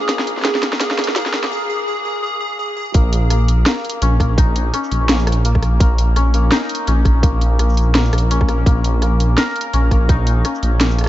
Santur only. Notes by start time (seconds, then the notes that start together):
Already playing: C#4
0.09 A#3
0.45 A#3
0.80 A#3
1.16 A#3
2.94 A#3
3.30 A#3
3.66 A#3
4.02 C#4
4.20 A#3
4.38 D#4
4.74 C#4
5.09 A#3
5.45 A#3
5.81 A#3
6.16 C#4
6.34 A#3
6.52 D#4
6.87 C#4
7.23 A#3
7.59 A#3
7.95 A#3
8.31 C#4
8.49 A#3
8.67 A#3
9.02 A#3
9.38 A#4
9.73 C#4
9.91 A#3
10.09 D#4
10.45 C#4
10.81 A#3